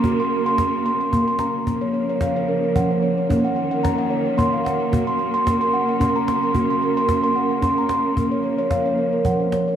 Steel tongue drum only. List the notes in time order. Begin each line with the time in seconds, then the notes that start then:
Already playing: A#5
0.04 A#3 F#4
0.20 C6
0.46 C6
0.86 C6
1.01 C6
1.13 A#3 C6
1.28 C6
1.39 A#5
1.67 A#3
1.81 C#5
1.94 C#5
2.09 C#5
2.22 F5
2.36 C#5
2.49 A#4
2.64 A#4
2.76 F3 F#5
2.90 C5
3.02 C#5
3.18 C#5
3.30 A#3 C#4
3.44 F#5
3.56 F#5
3.71 F#5
3.83 A#5
3.98 F#5
4.10 C#5
4.26 C#5
4.37 A#3 C6
4.53 F5
4.65 F#5
4.80 F#5
4.92 A#3 F#4
5.07 C6
5.19 C6
5.34 C6
5.46 C6
5.61 C6
5.73 F#5
5.89 F#5
6.00 C#4 C6
6.16 A#5
6.28 C6
6.43 C6
6.55 A#3 F#4
6.70 C6
6.82 C6
6.97 C6
7.09 C6
7.24 C6
7.36 F#5
7.51 F#5
7.62 C#4 C6
7.78 A#5
7.90 C6
8.17 A#3
8.31 C#5
8.44 C#5
8.58 C#5
8.71 F5
8.86 C#5
8.98 A#4
9.13 A#4
9.25 F3 F#5
9.40 C5
9.53 C#5
9.68 C#5